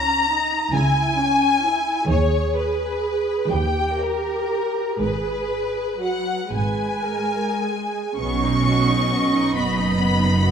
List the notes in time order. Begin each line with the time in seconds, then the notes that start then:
Already playing: C#2 C#3 C#4 A#5
0.29 D#4
0.74 C#2 C#3 E4 G#5
1.19 C#4
1.65 E4
2.09 D#2 D#3 G#4 C#5
2.56 B4
3.49 D#2 D#3 G4 G5
3.98 A#4
4.99 G#1 G#2 G#4 B4
6.00 F#3 F#5
6.51 G#1 G#2 G#3 B4 G#5
7.05 A#4
7.63 G#4
8.17 B1 B2 B3 C#4 D#5 C#6
8.43 D#4
8.67 F#4
8.89 D#4
9.12 B3
9.33 D#4
9.54 F#1 F#2 B3 F#4 B5
9.77 D#4
9.99 B3
10.19 D#4
10.42 F#4